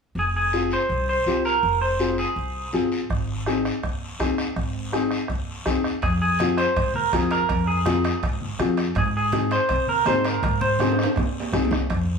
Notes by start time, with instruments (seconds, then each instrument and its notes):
0.15 upright bass F1, clean electric guitar G#4, long guiro
0.36 clean electric guitar G#4
0.53 upright piano C4 F4 G#4, short guiro
0.71 clean electric guitar C5, short guiro
0.89 upright bass C2, long guiro
1.09 clean electric guitar C5
1.26 upright bass C2, upright piano C4 F4 G4, short guiro
1.45 clean electric guitar A#4, short guiro
1.63 upright bass F1, long guiro
1.82 clean electric guitar C5
2.00 upright piano C4 F4 G#4, short guiro
2.18 clean electric guitar G#4, short guiro
2.36 upright bass C2, long guiro
2.73 upright bass G1, upright piano C4 F4 G#4, short guiro
2.92 short guiro
3.10 upright bass G#1, bombo low, bombo rim, long guiro
3.46 upright piano C4 D#4 G#4, bombo rim, short guiro
3.65 bombo rim, short guiro
3.83 upright bass D#2, bombo low, bombo rim, long guiro
4.19 upright bass D#2, upright piano C4 D#4 G#4, bombo low, bombo rim, short guiro
4.38 bombo rim, short guiro
4.56 upright bass G#1, bombo low, bombo rim, long guiro
4.92 upright piano C4 D#4 G#4, bombo rim, short guiro
5.11 bombo rim, short guiro
5.28 upright bass D#2, bombo low, bombo rim, long guiro
5.65 upright bass D#2, upright piano C4 D#4 G#4, bombo low, bombo rim, short guiro
5.84 bombo rim, short guiro
6.02 upright bass F2, clean electric guitar G#4, bombo low, bombo rim, high conga, high timbale, long guiro
6.22 clean electric guitar G#4
6.39 upright piano C4 F4 G#4, bombo rim, high conga, high timbale, short guiro
6.58 clean electric guitar C5, bombo rim, high timbale, short guiro
6.76 upright bass G#2, bombo low, bombo rim, high conga, high timbale, long guiro
6.94 clean electric guitar A#4, high conga
7.13 upright bass F2, upright piano C4 F4 G#4, clean electric guitar G#4, bombo low, bombo rim, high conga, high timbale, short guiro
7.31 clean electric guitar A#4, bombo rim, high timbale, short guiro
7.49 upright bass F2, bombo low, bombo rim, high conga, high timbale, long guiro
7.67 clean electric guitar G#4
7.85 upright piano C4 F4 G#4, bombo rim, high conga, high timbale, short guiro
8.04 bombo rim, high timbale, short guiro
8.23 upright bass G#2, bombo low, bombo rim, high conga, high timbale, long guiro
8.41 high conga
8.59 upright bass F2, upright piano C4 F4 G#4, bombo rim, high conga, high timbale, short guiro
8.77 bombo rim, high timbale, short guiro
8.95 upright bass G#2, clean electric guitar G#4, bombo low, bombo rim, high timbale, long guiro
9.17 clean electric guitar G#4
9.32 upright piano C4 D#4 G#4, bombo rim, high conga, high timbale, short guiro
9.51 clean electric guitar C5, bombo rim, high timbale, short guiro
9.69 upright bass C3, bombo low, bombo rim, high conga, high timbale, long guiro
9.88 clean electric guitar A#4, high conga
10.05 upright bass G#2, upright piano C4 D#4 G#4, clean electric guitar C5, bombo rim, high conga, high timbale, low timbale, short guiro
10.24 clean electric guitar A#4, bombo rim, high timbale, short guiro
10.43 upright bass G#2, bombo low, bombo rim, high conga, high timbale, long guiro
10.61 clean electric guitar C5, high conga
10.79 upright piano C4 D#4 G#4, bombo rim, high conga, high timbale, short guiro
10.92 high timbale
10.99 bombo rim, short guiro
11.03 high timbale
11.16 upright bass C3, bombo low, bombo rim, low conga, low timbale, long guiro
11.40 low timbale
11.53 upright bass C2, upright piano C4 D#4 G#4, bombo rim, low conga, short guiro
11.65 low timbale
11.71 bombo rim, low conga, short guiro
11.77 low timbale
11.89 upright bass F2, bombo low, bombo rim, high conga, high timbale, long guiro